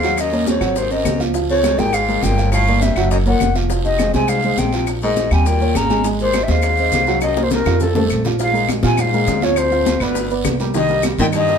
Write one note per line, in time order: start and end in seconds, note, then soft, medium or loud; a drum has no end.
0.00 0.56 D#2 medium
0.00 0.21 G#2 medium
0.00 0.28 F#3 medium
0.00 0.28 F#4 medium
0.00 0.22 F5 medium
0.00 short guiro medium
0.00 maracas soft
0.04 0.28 F#5 medium
0.17 0.48 F#2 medium
0.17 0.49 D#5 medium
0.17 high bongo medium
0.17 high conga soft
0.17 long guiro medium
0.17 claves medium
0.17 maracas medium
0.32 0.57 A#3 medium
0.32 0.57 A#4 medium
0.32 0.57 C#5 medium
0.32 high bongo soft
0.32 high conga soft
0.32 maracas soft
0.47 0.79 F2 medium
0.47 0.79 C#5 medium
0.47 high bongo medium
0.47 high conga medium
0.47 short guiro medium
0.47 maracas medium
0.61 1.02 G#1 medium
0.61 0.85 F#3 medium
0.61 0.85 F#4 medium
0.61 0.85 F#5 medium
0.61 high bongo soft
0.61 high conga soft
0.61 short guiro medium
0.61 claves medium
0.61 maracas soft
0.76 0.93 D#2 medium
0.76 0.93 C5 medium
0.76 high bongo medium
0.76 high conga soft
0.76 long guiro medium
0.76 maracas medium
0.90 1.21 F#2 medium
0.90 1.15 C4 medium
0.90 1.15 C5 medium
0.90 1.15 D#5 medium
0.90 1.21 D#5 medium
0.90 high bongo soft
0.90 high conga soft
0.90 maracas soft
1.05 1.73 C#2 medium
1.05 high bongo soft
1.05 low bongo medium
1.05 high conga medium
1.05 short guiro medium
1.05 claves medium
1.05 maracas medium
1.20 1.32 F3 medium
1.20 1.32 F4 medium
1.20 1.32 F5 medium
1.20 high conga medium
1.20 short guiro medium
1.20 maracas soft
1.34 1.59 F3 medium
1.34 1.59 F4 medium
1.34 1.59 F5 medium
1.34 high bongo medium
1.34 high conga soft
1.34 long guiro medium
1.34 maracas medium
1.49 1.80 F2 medium
1.49 1.80 C#5 medium
1.49 high bongo soft
1.49 high conga soft
1.49 maracas soft
1.63 1.77 G#3 medium
1.63 1.77 G#4 medium
1.63 1.77 A#4 medium
1.63 high bongo medium
1.63 high conga medium
1.63 short guiro medium
1.63 claves medium
1.63 maracas medium
1.78 2.20 G#1 medium
1.78 1.95 A#2 medium
1.78 2.03 G#3 medium
1.78 2.03 G#4 medium
1.78 2.03 A#4 medium
1.78 1.96 G5 loud
1.78 high conga medium
1.78 short guiro medium
1.78 maracas soft
1.93 2.25 G#2 medium
1.93 2.25 F5 medium
1.93 high bongo medium
1.93 high conga soft
1.93 long guiro medium
1.93 claves medium
1.93 maracas medium
2.08 2.33 G#3 medium
2.08 2.33 G#4 medium
2.08 2.33 A#4 medium
2.08 high bongo soft
2.08 high conga soft
2.08 maracas soft
2.23 2.91 G1 medium
2.23 2.52 A#2 medium
2.23 2.52 G5 loud
2.23 high bongo soft
2.23 low bongo medium
2.23 high conga medium
2.23 short guiro medium
2.23 maracas medium
2.38 2.62 F3 medium
2.38 2.62 F4 medium
2.38 2.63 F5 medium
2.38 high conga soft
2.38 short guiro medium
2.38 maracas soft
2.52 2.83 A2 medium
2.52 2.84 F5 medium
2.52 high bongo medium
2.52 high conga soft
2.52 long guiro medium
2.52 claves medium
2.52 maracas medium
2.67 2.92 A#3 medium
2.67 2.92 A#4 medium
2.67 2.92 D5 medium
2.67 high bongo soft
2.67 high conga soft
2.67 maracas soft
2.81 3.11 G2 medium
2.81 3.11 E5 medium
2.81 high bongo medium
2.81 high conga medium
2.81 short guiro medium
2.81 maracas medium
2.96 3.37 F#1 medium
2.96 3.21 F#3 medium
2.96 3.21 F#4 medium
2.96 3.21 F#5 medium
2.96 high bongo soft
2.96 high conga soft
2.96 short guiro medium
2.96 claves medium
2.96 maracas soft
3.11 3.18 F#2 medium
3.11 3.17 D#5 medium
3.11 high bongo medium
3.11 long guiro medium
3.11 maracas medium
3.26 3.53 A#2 medium
3.26 3.50 A#3 medium
3.26 3.50 A#4 medium
3.26 3.51 C#5 medium
3.26 3.54 F#5 medium
3.26 high bongo soft
3.26 high conga soft
3.26 maracas soft
3.40 4.08 F1 medium
3.40 high bongo soft
3.40 low bongo medium
3.40 high conga medium
3.40 short guiro medium
3.40 claves medium
3.40 maracas medium
3.55 3.67 F3 medium
3.55 3.67 F4 medium
3.55 3.68 F5 medium
3.55 high conga medium
3.55 short guiro medium
3.55 maracas soft
3.70 3.94 F3 medium
3.70 3.94 F4 medium
3.70 3.94 F5 medium
3.70 high bongo medium
3.70 high conga soft
3.70 long guiro medium
3.70 maracas medium
3.84 4.11 G2 medium
3.84 4.12 D#5 medium
3.84 high bongo soft
3.84 high conga soft
3.84 maracas soft
3.99 4.11 G#3 medium
3.99 4.12 G#4 medium
3.99 4.12 C5 medium
3.99 high bongo medium
3.99 high conga medium
3.99 short guiro medium
3.99 claves medium
3.99 maracas medium
4.14 4.55 C2 medium
4.14 4.30 C3 medium
4.14 4.38 G#3 medium
4.14 4.38 G#4 medium
4.14 4.39 C5 medium
4.14 4.31 G#5 medium
4.14 high bongo soft
4.14 high conga medium
4.14 short guiro medium
4.14 maracas soft
4.28 4.59 G#2 medium
4.28 4.60 F5 medium
4.28 high bongo medium
4.28 high conga soft
4.28 long guiro medium
4.28 claves medium
4.28 maracas medium
4.43 4.68 G#3 medium
4.43 4.68 G#4 medium
4.43 4.68 C5 medium
4.43 high bongo soft
4.43 high conga soft
4.43 maracas soft
4.58 5.26 A#1 medium
4.58 4.87 C3 medium
4.58 4.88 G5 medium
4.58 high bongo soft
4.58 low bongo medium
4.58 high conga medium
4.58 short guiro medium
4.58 maracas medium
4.73 4.97 F3 medium
4.73 4.97 F4 medium
4.73 4.97 F5 medium
4.73 short guiro medium
4.73 maracas soft
4.87 high bongo medium
4.87 high conga soft
4.87 long guiro medium
4.87 claves medium
4.87 maracas medium
5.02 5.34 G#2 medium
5.02 5.27 G#3 medium
5.02 5.27 G#4 medium
5.02 5.27 A#4 medium
5.02 5.34 D#5 medium
5.02 high bongo soft
5.02 high conga soft
5.02 maracas soft
5.16 high bongo medium
5.16 high conga medium
5.16 short guiro medium
5.16 maracas medium
5.31 5.72 D#2 medium
5.31 5.48 C3 medium
5.31 5.56 G3 medium
5.31 5.56 G4 medium
5.31 5.56 G5 medium
5.31 5.49 G#5 medium
5.31 high bongo soft
5.31 high conga soft
5.31 short guiro medium
5.31 claves medium
5.31 maracas soft
5.46 5.78 A#2 medium
5.46 5.78 G5 medium
5.46 high bongo medium
5.46 high conga soft
5.46 long guiro medium
5.46 maracas medium
5.61 5.85 A#3 medium
5.61 5.85 A#4 medium
5.61 5.85 C#5 medium
5.61 high bongo soft
5.61 high conga soft
5.61 maracas soft
5.75 6.43 G#1 medium
5.75 6.05 C#3 medium
5.75 6.06 A#5 medium
5.75 high bongo soft
5.75 low bongo medium
5.75 high conga medium
5.75 short guiro medium
5.75 claves medium
5.75 maracas medium
5.90 6.02 G#3 medium
5.90 6.02 G#4 medium
5.90 6.02 G#5 medium
5.90 high conga medium
5.90 short guiro medium
5.90 maracas soft
6.04 6.29 G#3 medium
6.04 6.29 G#4 medium
6.04 6.29 G#5 medium
6.04 high bongo medium
6.04 high conga soft
6.04 long guiro medium
6.04 maracas medium
6.19 6.44 D#2 medium
6.19 6.45 C5 medium
6.19 high bongo soft
6.19 high conga soft
6.19 maracas soft
6.33 6.47 C4 medium
6.33 6.47 C5 medium
6.33 6.47 D#5 medium
6.33 high bongo medium
6.33 high conga medium
6.33 short guiro medium
6.33 claves medium
6.33 maracas medium
6.43 6.51 G2 medium
6.43 6.52 E5 medium
6.48 6.90 D#2 medium
6.48 7.21 G#2 medium
6.48 6.73 C4 medium
6.48 6.74 C5 medium
6.48 6.74 D#5 medium
6.48 7.22 F5 loud
6.48 high bongo soft
6.48 high conga medium
6.48 short guiro medium
6.48 maracas soft
6.62 high bongo medium
6.62 high conga soft
6.62 long guiro medium
6.62 claves medium
6.62 maracas medium
6.77 7.03 C4 medium
6.77 7.03 C5 medium
6.77 7.03 D#5 medium
6.77 high bongo soft
6.77 high conga soft
6.77 maracas soft
6.92 7.61 C2 medium
6.92 high bongo soft
6.92 low bongo medium
6.92 high conga medium
6.92 short guiro medium
6.92 maracas medium
7.07 7.32 F#3 medium
7.07 7.32 F#4 medium
7.07 7.32 F#5 medium
7.07 high conga soft
7.07 short guiro medium
7.07 maracas soft
7.21 7.44 F#2 medium
7.21 7.45 D#5 medium
7.21 high bongo medium
7.21 high conga soft
7.21 long guiro medium
7.21 claves medium
7.21 maracas medium
7.36 7.61 A#3 medium
7.36 7.62 A#4 medium
7.36 7.62 C5 medium
7.36 high bongo medium
7.36 high conga soft
7.36 maracas soft
7.43 7.52 D#2 medium
7.43 7.52 C5 medium
7.50 7.83 D#2 medium
7.50 7.84 A#4 medium
7.50 low bongo medium
7.50 high conga medium
7.50 short guiro medium
7.50 maracas medium
7.65 8.07 F2 medium
7.65 7.90 F3 medium
7.65 7.91 F4 medium
7.65 7.91 F5 medium
7.65 low bongo medium
7.65 short guiro medium
7.65 claves medium
7.65 maracas soft
7.80 8.25 C2 medium
7.80 8.26 A4 medium
7.80 low bongo medium
7.80 high conga soft
7.80 long guiro medium
7.80 maracas medium
7.95 8.20 A3 medium
7.95 8.20 A4 medium
7.95 8.20 C5 medium
7.95 low bongo medium
7.95 high conga medium
7.95 maracas soft
8.05 low conga medium
8.10 8.78 A#1 medium
8.10 short guiro medium
8.10 claves medium
8.10 maracas medium
8.15 low conga medium
8.25 8.37 F3 medium
8.25 8.38 F4 medium
8.25 8.38 F5 medium
8.25 low bongo medium
8.25 low conga medium
8.25 short guiro medium
8.25 maracas soft
8.39 8.68 G#2 medium
8.39 8.52 F3 medium
8.39 8.52 F4 medium
8.39 8.52 F5 medium
8.39 8.68 F5 medium
8.39 high bongo medium
8.39 high conga soft
8.39 long guiro medium
8.39 maracas medium
8.53 8.78 G#3 medium
8.53 8.78 G#4 medium
8.53 8.78 A#4 medium
8.53 high conga soft
8.53 maracas soft
8.69 high bongo medium
8.69 high conga medium
8.69 short guiro medium
8.69 claves medium
8.69 maracas medium
8.83 9.24 A#2 medium
8.83 9.01 C3 medium
8.83 9.07 F3 medium
8.83 9.08 F4 medium
8.83 9.08 F5 medium
8.83 9.02 G#5 medium
8.83 high conga medium
8.83 short guiro medium
8.83 maracas soft
8.97 9.45 G#2 medium
8.97 9.45 F5 medium
8.97 high bongo medium
8.97 high conga soft
8.97 low conga medium
8.97 long guiro medium
8.97 claves medium
8.97 maracas medium
9.13 9.37 G#3 medium
9.13 9.38 G#4 medium
9.13 9.38 A#4 medium
9.13 high conga soft
9.13 low conga medium
9.13 maracas soft
9.27 9.95 D2 medium
9.27 high bongo medium
9.27 low bongo medium
9.27 high conga medium
9.27 short guiro medium
9.27 maracas medium
9.42 9.57 F2 medium
9.42 9.66 F3 medium
9.42 9.66 F4 medium
9.42 9.59 C#5 medium
9.42 9.67 F5 medium
9.42 high conga medium
9.42 short guiro medium
9.42 maracas soft
9.56 10.02 F2 medium
9.56 10.04 C5 medium
9.56 high bongo medium
9.56 long guiro medium
9.56 claves medium
9.56 maracas medium
9.72 9.96 F3 medium
9.72 9.96 F4 medium
9.72 9.96 F5 medium
9.72 high conga soft
9.72 maracas soft
9.86 high bongo medium
9.86 high conga medium
9.86 short guiro medium
9.86 maracas medium
10.00 10.42 G1 medium
10.00 10.30 D2 medium
10.00 10.25 B3 medium
10.00 10.26 B4 medium
10.00 10.31 B4 medium
10.00 10.26 D5 medium
10.00 high bongo soft
10.00 high conga soft
10.00 short guiro medium
10.00 claves medium
10.00 maracas soft
10.15 high bongo medium
10.15 high conga soft
10.15 long guiro medium
10.15 maracas medium
10.30 10.55 B3 medium
10.30 10.55 B4 medium
10.30 10.55 D5 medium
10.30 high bongo soft
10.30 high conga soft
10.30 maracas soft
10.44 11.13 C2 medium
10.44 high bongo medium
10.44 low bongo medium
10.44 high conga medium
10.44 short guiro medium
10.44 claves medium
10.44 maracas medium
10.60 10.72 G3 medium
10.60 10.72 G4 medium
10.60 10.72 A#4 medium
10.60 high bongo soft
10.60 high conga medium
10.60 short guiro medium
10.60 maracas soft
10.74 11.02 G2 medium
10.74 10.87 D#3 medium
10.74 10.87 D#4 medium
10.74 10.87 D#5 medium
10.74 11.03 D#5 loud
10.74 high bongo medium
10.74 high conga soft
10.74 long guiro medium
10.74 maracas medium
10.88 11.13 G3 medium
10.88 11.14 G4 medium
10.88 11.14 A#4 medium
10.88 high conga soft
10.88 maracas soft
11.03 high bongo medium
11.03 high conga medium
11.03 short guiro medium
11.03 claves medium
11.03 maracas medium
11.18 11.58 G2 medium
11.18 11.26 A#2 medium
11.18 11.43 D#3 medium
11.18 11.43 D#4 medium
11.18 11.43 D#5 medium
11.18 11.27 G5 loud
11.18 high conga medium
11.18 short guiro medium
11.18 maracas soft
11.33 11.58 G2 medium
11.33 11.58 D#5 loud
11.33 high bongo medium
11.33 high conga soft
11.33 low conga medium
11.33 long guiro medium
11.33 claves medium
11.33 maracas medium
11.48 11.58 G3 medium
11.48 11.58 G4 medium
11.48 11.58 A#4 medium
11.48 high conga soft
11.48 maracas soft